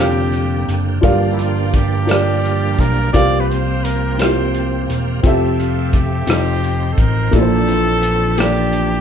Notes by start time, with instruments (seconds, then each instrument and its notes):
Already playing: fingered electric bass F1, tonewheel organ D3 A#3 C4 G4, upright piano A#3 C4 F4 G4 A#4 D5, trumpet G4
0.00 upright piano F5
0.33 closed hi-hat
0.68 fingered electric bass F#1, closed hi-hat
1.01 fingered electric bass G1, upright piano G2 D4 F4 G4 A#4 F5, tonewheel organ F3 A#3 D4 G4, kick, closed hi-hat
1.32 trumpet E4
1.39 trumpet F4, closed hi-hat
1.74 trumpet G4, kick, closed hi-hat
2.05 upright piano D4 F4 G4 A#4 D5, closed hi-hat
2.11 cross-stick
2.45 closed hi-hat
2.79 fingered electric bass B1, trumpet A#4, kick, closed hi-hat
3.13 fingered electric bass C2, upright piano C3 C4 F4 G4 A#4 F5, tonewheel organ F3 A#3 C4 G4, trumpet D5, kick, closed hi-hat
3.40 trumpet B4
3.50 trumpet C5, closed hi-hat
3.84 trumpet A#4, closed hi-hat
4.18 upright piano C4 E4 G4 A#4 E5, trumpet C5, cross-stick, closed hi-hat
4.26 upright piano F4
4.54 closed hi-hat
4.88 fingered electric bass E1, closed hi-hat
5.23 fingered electric bass F1, tonewheel organ F3 A3 G4 E5, upright piano C4 F4 G4 A4 E5, kick, closed hi-hat
5.58 trumpet F4, closed hi-hat
5.93 trumpet G4, kick, closed hi-hat
6.27 fingered electric bass F1, tonewheel organ F3 C4 D#4 C5, upright piano C4 D#4 F4 A4 D#5, cross-stick, closed hi-hat
6.64 closed hi-hat
6.93 trumpet A4
6.98 fingered electric bass A1, trumpet A#4, kick, closed hi-hat
7.31 fingered electric bass A#1, upright piano A#2 A#3 D4 E4 A4 A#4, tonewheel organ E3 C4 D4 A4, trumpet A4, kick, closed hi-hat
7.41 upright piano C5
7.69 closed hi-hat
8.03 closed hi-hat
8.38 upright piano A#3 D4 E4 A4 D5, trumpet G4, cross-stick, closed hi-hat
8.73 closed hi-hat